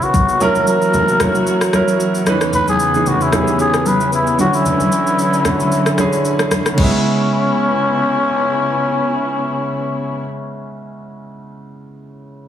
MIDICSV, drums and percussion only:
0, 0, Header, 1, 2, 480
1, 0, Start_track
1, 0, Tempo, 530973
1, 367, Time_signature, 4, 2, 24, 8
1, 11283, End_track
2, 0, Start_track
2, 0, Title_t, "Drums"
2, 19, Note_on_c, 9, 82, 47
2, 109, Note_off_c, 9, 82, 0
2, 126, Note_on_c, 9, 36, 100
2, 126, Note_on_c, 9, 63, 65
2, 127, Note_on_c, 9, 82, 84
2, 216, Note_off_c, 9, 36, 0
2, 216, Note_off_c, 9, 63, 0
2, 218, Note_off_c, 9, 82, 0
2, 259, Note_on_c, 9, 82, 52
2, 349, Note_off_c, 9, 82, 0
2, 366, Note_on_c, 9, 64, 64
2, 367, Note_on_c, 9, 82, 75
2, 456, Note_off_c, 9, 64, 0
2, 457, Note_off_c, 9, 82, 0
2, 499, Note_on_c, 9, 63, 64
2, 499, Note_on_c, 9, 82, 54
2, 589, Note_off_c, 9, 63, 0
2, 589, Note_off_c, 9, 82, 0
2, 607, Note_on_c, 9, 82, 82
2, 697, Note_off_c, 9, 82, 0
2, 739, Note_on_c, 9, 82, 49
2, 829, Note_off_c, 9, 82, 0
2, 846, Note_on_c, 9, 82, 71
2, 848, Note_on_c, 9, 64, 69
2, 937, Note_off_c, 9, 82, 0
2, 939, Note_off_c, 9, 64, 0
2, 980, Note_on_c, 9, 82, 56
2, 1070, Note_off_c, 9, 82, 0
2, 1084, Note_on_c, 9, 37, 97
2, 1087, Note_on_c, 9, 82, 92
2, 1089, Note_on_c, 9, 63, 69
2, 1089, Note_on_c, 9, 64, 68
2, 1175, Note_off_c, 9, 37, 0
2, 1177, Note_off_c, 9, 82, 0
2, 1179, Note_off_c, 9, 63, 0
2, 1179, Note_off_c, 9, 64, 0
2, 1220, Note_on_c, 9, 82, 58
2, 1310, Note_off_c, 9, 82, 0
2, 1327, Note_on_c, 9, 82, 71
2, 1417, Note_off_c, 9, 82, 0
2, 1458, Note_on_c, 9, 37, 87
2, 1458, Note_on_c, 9, 82, 55
2, 1548, Note_off_c, 9, 37, 0
2, 1548, Note_off_c, 9, 82, 0
2, 1566, Note_on_c, 9, 37, 81
2, 1567, Note_on_c, 9, 82, 72
2, 1568, Note_on_c, 9, 63, 71
2, 1656, Note_off_c, 9, 37, 0
2, 1657, Note_off_c, 9, 82, 0
2, 1658, Note_off_c, 9, 63, 0
2, 1699, Note_on_c, 9, 82, 52
2, 1789, Note_off_c, 9, 82, 0
2, 1809, Note_on_c, 9, 82, 66
2, 1899, Note_off_c, 9, 82, 0
2, 1939, Note_on_c, 9, 82, 47
2, 2030, Note_off_c, 9, 82, 0
2, 2046, Note_on_c, 9, 63, 63
2, 2047, Note_on_c, 9, 82, 81
2, 2049, Note_on_c, 9, 37, 92
2, 2137, Note_off_c, 9, 63, 0
2, 2138, Note_off_c, 9, 82, 0
2, 2139, Note_off_c, 9, 37, 0
2, 2178, Note_on_c, 9, 82, 53
2, 2179, Note_on_c, 9, 37, 86
2, 2269, Note_off_c, 9, 37, 0
2, 2269, Note_off_c, 9, 82, 0
2, 2286, Note_on_c, 9, 64, 65
2, 2287, Note_on_c, 9, 82, 70
2, 2377, Note_off_c, 9, 64, 0
2, 2378, Note_off_c, 9, 82, 0
2, 2419, Note_on_c, 9, 63, 66
2, 2419, Note_on_c, 9, 82, 52
2, 2510, Note_off_c, 9, 63, 0
2, 2510, Note_off_c, 9, 82, 0
2, 2527, Note_on_c, 9, 82, 82
2, 2617, Note_off_c, 9, 82, 0
2, 2660, Note_on_c, 9, 82, 50
2, 2751, Note_off_c, 9, 82, 0
2, 2768, Note_on_c, 9, 64, 68
2, 2768, Note_on_c, 9, 82, 66
2, 2858, Note_off_c, 9, 82, 0
2, 2859, Note_off_c, 9, 64, 0
2, 2900, Note_on_c, 9, 82, 53
2, 2991, Note_off_c, 9, 82, 0
2, 3006, Note_on_c, 9, 37, 95
2, 3007, Note_on_c, 9, 63, 65
2, 3007, Note_on_c, 9, 64, 65
2, 3008, Note_on_c, 9, 82, 92
2, 3096, Note_off_c, 9, 37, 0
2, 3098, Note_off_c, 9, 63, 0
2, 3098, Note_off_c, 9, 64, 0
2, 3098, Note_off_c, 9, 82, 0
2, 3141, Note_on_c, 9, 82, 58
2, 3231, Note_off_c, 9, 82, 0
2, 3247, Note_on_c, 9, 82, 68
2, 3337, Note_off_c, 9, 82, 0
2, 3378, Note_on_c, 9, 37, 85
2, 3378, Note_on_c, 9, 82, 54
2, 3469, Note_off_c, 9, 37, 0
2, 3469, Note_off_c, 9, 82, 0
2, 3487, Note_on_c, 9, 63, 73
2, 3487, Note_on_c, 9, 82, 73
2, 3577, Note_off_c, 9, 63, 0
2, 3577, Note_off_c, 9, 82, 0
2, 3619, Note_on_c, 9, 82, 52
2, 3710, Note_off_c, 9, 82, 0
2, 3729, Note_on_c, 9, 82, 67
2, 3820, Note_off_c, 9, 82, 0
2, 3858, Note_on_c, 9, 82, 46
2, 3949, Note_off_c, 9, 82, 0
2, 3966, Note_on_c, 9, 63, 67
2, 3968, Note_on_c, 9, 82, 84
2, 4056, Note_off_c, 9, 63, 0
2, 4058, Note_off_c, 9, 82, 0
2, 4099, Note_on_c, 9, 82, 52
2, 4190, Note_off_c, 9, 82, 0
2, 4206, Note_on_c, 9, 64, 62
2, 4208, Note_on_c, 9, 82, 74
2, 4296, Note_off_c, 9, 64, 0
2, 4298, Note_off_c, 9, 82, 0
2, 4338, Note_on_c, 9, 63, 64
2, 4340, Note_on_c, 9, 82, 53
2, 4429, Note_off_c, 9, 63, 0
2, 4431, Note_off_c, 9, 82, 0
2, 4447, Note_on_c, 9, 82, 82
2, 4537, Note_off_c, 9, 82, 0
2, 4582, Note_on_c, 9, 82, 48
2, 4672, Note_off_c, 9, 82, 0
2, 4689, Note_on_c, 9, 82, 65
2, 4779, Note_off_c, 9, 82, 0
2, 4821, Note_on_c, 9, 82, 54
2, 4911, Note_off_c, 9, 82, 0
2, 4926, Note_on_c, 9, 37, 95
2, 4928, Note_on_c, 9, 63, 65
2, 4928, Note_on_c, 9, 64, 64
2, 4928, Note_on_c, 9, 82, 89
2, 5016, Note_off_c, 9, 37, 0
2, 5018, Note_off_c, 9, 63, 0
2, 5018, Note_off_c, 9, 64, 0
2, 5019, Note_off_c, 9, 82, 0
2, 5059, Note_on_c, 9, 63, 51
2, 5061, Note_on_c, 9, 82, 59
2, 5150, Note_off_c, 9, 63, 0
2, 5151, Note_off_c, 9, 82, 0
2, 5168, Note_on_c, 9, 82, 68
2, 5258, Note_off_c, 9, 82, 0
2, 5299, Note_on_c, 9, 37, 84
2, 5299, Note_on_c, 9, 82, 53
2, 5389, Note_off_c, 9, 37, 0
2, 5389, Note_off_c, 9, 82, 0
2, 5405, Note_on_c, 9, 37, 76
2, 5406, Note_on_c, 9, 82, 69
2, 5408, Note_on_c, 9, 63, 68
2, 5496, Note_off_c, 9, 37, 0
2, 5497, Note_off_c, 9, 82, 0
2, 5499, Note_off_c, 9, 63, 0
2, 5538, Note_on_c, 9, 82, 51
2, 5628, Note_off_c, 9, 82, 0
2, 5649, Note_on_c, 9, 82, 65
2, 5739, Note_off_c, 9, 82, 0
2, 5778, Note_on_c, 9, 82, 45
2, 5779, Note_on_c, 9, 37, 85
2, 5868, Note_off_c, 9, 82, 0
2, 5869, Note_off_c, 9, 37, 0
2, 5886, Note_on_c, 9, 63, 66
2, 5887, Note_on_c, 9, 82, 80
2, 5889, Note_on_c, 9, 37, 91
2, 5976, Note_off_c, 9, 63, 0
2, 5977, Note_off_c, 9, 82, 0
2, 5979, Note_off_c, 9, 37, 0
2, 6019, Note_on_c, 9, 37, 85
2, 6019, Note_on_c, 9, 82, 51
2, 6109, Note_off_c, 9, 82, 0
2, 6110, Note_off_c, 9, 37, 0
2, 6127, Note_on_c, 9, 36, 104
2, 6127, Note_on_c, 9, 49, 88
2, 6128, Note_on_c, 9, 63, 78
2, 6217, Note_off_c, 9, 36, 0
2, 6217, Note_off_c, 9, 49, 0
2, 6218, Note_off_c, 9, 63, 0
2, 11283, End_track
0, 0, End_of_file